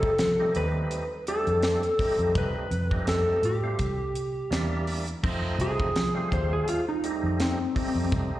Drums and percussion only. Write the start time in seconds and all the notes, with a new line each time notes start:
0.03 kick
0.18 snare, closed hi-hat
0.55 closed hi-hat
0.91 closed hi-hat
1.27 closed hi-hat
1.47 closed hi-hat
1.63 snare, closed hi-hat
1.83 closed hi-hat
1.99 kick, open hi-hat
2.19 closed hi-hat
2.35 kick, closed hi-hat
2.71 closed hi-hat
2.91 kick
3.07 snare, closed hi-hat
3.43 closed hi-hat
3.79 kick, closed hi-hat
4.15 closed hi-hat
4.52 snare, closed hi-hat
4.87 open hi-hat
5.07 closed hi-hat
5.24 kick, crash
5.60 closed hi-hat
5.80 kick
5.96 snare, closed hi-hat
6.32 kick, closed hi-hat
6.68 closed hi-hat
7.04 closed hi-hat
7.40 snare, closed hi-hat
7.76 kick, open hi-hat
8.12 kick, closed hi-hat